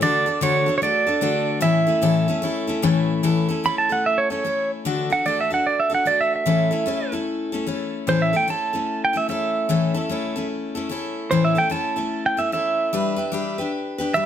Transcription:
0.01 steel-string acoustic guitar D3 A3 D4 F#4 A4, pedal steel guitar D5
0.26 steel-string acoustic guitar D4 F#4 A4
0.41 steel-string acoustic guitar D3 A3 D4 F#4 A4, pedal steel guitar C#5
0.66 steel-string acoustic guitar D4 F#4 A4
0.78 pedal steel guitar C#5
0.82 steel-string acoustic guitar A3 D4 F#4 A4, pedal steel guitar D5
1.07 steel-string acoustic guitar D4 F#4 A4
1.21 steel-string acoustic guitar D3 A3 D4 F#4 A4
1.61 steel-string acoustic guitar A2 E3 A3 C#4 E4 A4, pedal steel guitar E5
1.87 steel-string acoustic guitar A3 C#4 E4 A4
2.02 steel-string acoustic guitar A2 E3 A3 C#4 E4 A4
2.28 steel-string acoustic guitar A3 C#4 E4 A4
2.42 steel-string acoustic guitar A3 C#4 E4 A4
2.67 steel-string acoustic guitar A3 C#4 E4 A4
2.82 steel-string acoustic guitar A2 E3 A3 C#4 E4 A4
3.23 steel-string acoustic guitar A2 E3 A3 C#4 E4 A4
3.49 steel-string acoustic guitar A3 C#4 E4 A4
3.64 steel-string acoustic guitar A3 C#4 E4 A4, pedal steel guitar B5
3.78 pedal steel guitar A5
3.89 steel-string acoustic guitar A3 C#4 E4 A4, pedal steel guitar F#5
4.06 pedal steel guitar E5
4.18 pedal steel guitar C#5
4.30 steel-string acoustic guitar A3 C#4 E4 A4, pedal steel guitar C#5
4.45 steel-string acoustic guitar A3 C#4 E4 A4
4.85 steel-string acoustic guitar D3 A3 D4 F#4 A4
5.10 steel-string acoustic guitar D4 F#4 A4, pedal steel guitar F#5
5.26 steel-string acoustic guitar A3 D4 F#4 A4, pedal steel guitar D5
5.41 pedal steel guitar E5
5.50 steel-string acoustic guitar D4 F#4 A4, pedal steel guitar F#5
5.67 pedal steel guitar D5
5.80 pedal steel guitar E5
5.90 steel-string acoustic guitar D4 F#4 A4
5.95 pedal steel guitar F#5
6.05 steel-string acoustic guitar A3 D4 F#4 A4, pedal steel guitar D5
6.21 pedal steel guitar E5
6.36 pedal steel guitar E5
6.46 steel-string acoustic guitar A2 E3 A3 C#4 E4 A4
6.71 steel-string acoustic guitar A3 C#4 E4 A4
6.86 steel-string acoustic guitar A3 C#4 E4 A4
7.12 steel-string acoustic guitar A3 C#4 E4 A4
7.52 steel-string acoustic guitar A3 C#4 E4 A4
7.67 steel-string acoustic guitar A3 C#4 E4 A4
8.07 steel-string acoustic guitar A2 E3 A3 C#4 E4 A4, pedal steel guitar C5
8.22 pedal steel guitar E5
8.33 steel-string acoustic guitar A3 C#4 E4 A4, pedal steel guitar G5
8.48 steel-string acoustic guitar A3 C#4 E4 A4, pedal steel guitar A5
8.73 steel-string acoustic guitar A3 C#4 E4 A4
9.05 pedal steel guitar G5
9.13 steel-string acoustic guitar A3 C#4 E4 A4, pedal steel guitar E5
9.29 steel-string acoustic guitar A3 C#4 E4 A4, pedal steel guitar E5
9.69 steel-string acoustic guitar A2 E3 A3 C#4 E4 A4
9.94 steel-string acoustic guitar A3 C#4 E4 A4
10.09 steel-string acoustic guitar A3 C#4 E4 A4
10.36 steel-string acoustic guitar A3 C#4 E4 A4
10.75 steel-string acoustic guitar A3 C#4 E4 A4
10.89 steel-string acoustic guitar A3 C#4 E4 A4
11.31 steel-string acoustic guitar A2 E3 A3 C#4 E4 A4, pedal steel guitar C5
11.45 pedal steel guitar E5
11.55 steel-string acoustic guitar A3 C#4 E4 A4, pedal steel guitar G5
11.70 steel-string acoustic guitar A3 C#4 E4 A4, pedal steel guitar A5
11.96 steel-string acoustic guitar A3 C#4 E4 A4
12.26 pedal steel guitar G5
12.37 steel-string acoustic guitar A3 C#4 E4 A4, pedal steel guitar E5
12.52 steel-string acoustic guitar A3 C#4 E4 A4, pedal steel guitar E5
12.93 steel-string acoustic guitar G3 D4 G4 B4
13.16 steel-string acoustic guitar D4 G4 B4
13.32 steel-string acoustic guitar G3 D4 G4 B4
13.58 steel-string acoustic guitar D4 G4 B4
13.98 steel-string acoustic guitar D4 G4 B4
14.14 steel-string acoustic guitar G3 D4 G4 B4, pedal steel guitar E5

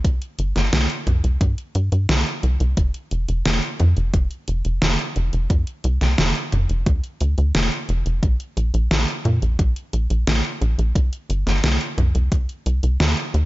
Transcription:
0.05 analog synth bass C2, kick, closed hi-hat
0.22 closed hi-hat
0.39 analog synth bass G1, closed hi-hat
0.56 analog synth bass G1, snare, closed hi-hat
0.73 analog synth bass C2, snare, closed hi-hat
0.90 closed hi-hat
1.07 analog synth bass C2, closed hi-hat, mid tom
1.24 analog synth bass C2, closed hi-hat
1.41 analog synth bass G2, kick, closed hi-hat
1.58 closed hi-hat
1.75 analog synth bass G2, closed hi-hat
1.92 analog synth bass G2, closed hi-hat
2.09 analog synth bass C2, snare, closed hi-hat
2.26 closed hi-hat
2.43 analog synth bass C2, closed hi-hat
2.60 analog synth bass C2, closed hi-hat
2.77 analog synth bass F1, kick, closed hi-hat
2.94 closed hi-hat
3.11 analog synth bass F1, closed hi-hat
3.28 analog synth bass F1, closed hi-hat
3.46 analog synth bass F1, snare, closed hi-hat
3.63 closed hi-hat
3.80 analog synth bass F2, closed hi-hat, mid tom
3.97 analog synth bass F1, closed hi-hat
4.14 analog synth bass F1, kick, closed hi-hat
4.31 closed hi-hat
4.48 analog synth bass F1, closed hi-hat
4.65 analog synth bass F1, closed hi-hat
4.82 analog synth bass F1, snare, closed hi-hat
4.99 closed hi-hat
5.16 analog synth bass F1, closed hi-hat
5.33 analog synth bass F1, closed hi-hat
5.50 analog synth bass F2, kick, closed hi-hat
5.67 closed hi-hat
5.84 analog synth bass C2, closed hi-hat
6.01 analog synth bass C2, snare, closed hi-hat
6.18 analog synth bass F1, snare, closed hi-hat
6.35 closed hi-hat
6.52 analog synth bass F1, closed hi-hat, mid tom
6.69 analog synth bass F1, closed hi-hat
6.86 analog synth bass D2, kick, closed hi-hat
7.04 closed hi-hat
7.21 analog synth bass D2, closed hi-hat
7.38 analog synth bass D2, closed hi-hat
7.55 analog synth bass F1, snare, closed hi-hat
7.72 closed hi-hat
7.89 analog synth bass F1, closed hi-hat
8.06 analog synth bass F1, closed hi-hat
8.23 analog synth bass A#1, kick, closed hi-hat
8.40 closed hi-hat
8.57 analog synth bass A#1, closed hi-hat
8.74 analog synth bass A#1, closed hi-hat
8.91 analog synth bass A#1, snare, closed hi-hat
9.08 closed hi-hat
9.25 analog synth bass A#2, closed hi-hat, mid tom
9.42 analog synth bass A#1, closed hi-hat
9.59 analog synth bass A#1, kick, closed hi-hat
9.76 closed hi-hat
9.93 analog synth bass A#1, closed hi-hat
10.10 analog synth bass A#1, closed hi-hat
10.27 analog synth bass A#1, snare, closed hi-hat
10.45 closed hi-hat
10.61 analog synth bass A#1, closed hi-hat
10.78 analog synth bass A#1, closed hi-hat
10.95 analog synth bass C2, kick, closed hi-hat
11.13 closed hi-hat
11.30 analog synth bass G1, closed hi-hat
11.47 analog synth bass G1, snare, closed hi-hat
11.64 analog synth bass C2, snare, closed hi-hat
11.81 closed hi-hat
11.98 analog synth bass C2, closed hi-hat, mid tom
12.15 analog synth bass C2, closed hi-hat
12.32 analog synth bass C2, kick, closed hi-hat
12.49 closed hi-hat
12.66 analog synth bass C2, closed hi-hat
12.83 analog synth bass C2, closed hi-hat
13.00 analog synth bass D#2, snare, closed hi-hat
13.17 closed hi-hat
13.34 analog synth bass D#2, closed hi-hat

